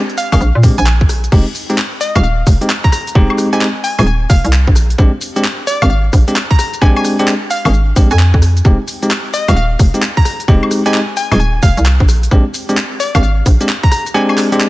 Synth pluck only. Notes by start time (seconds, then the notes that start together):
0.18 F5
0.32 F5
0.78 G#5
2.01 D#5
2.15 F5
2.24 F5
2.84 A#5
2.92 A#5
3.53 G#5
3.84 G#5
3.99 G#5
4.07 G#5
4.30 F5
5.67 D5
5.82 F5
5.90 F5
6.51 A#5
6.59 A#5
6.82 G#5
6.96 G#5
7.51 F5
7.65 F5
8.11 G#5
9.34 D#5
9.48 F5
9.57 F5
10.17 A#5
10.25 A#5
10.86 G#5
11.17 G#5
11.32 G#5
11.40 G#5
11.63 F5
13.00 D5
13.15 F5
13.23 F5
13.83 A#5
13.91 A#5
14.14 G#5
14.29 G#5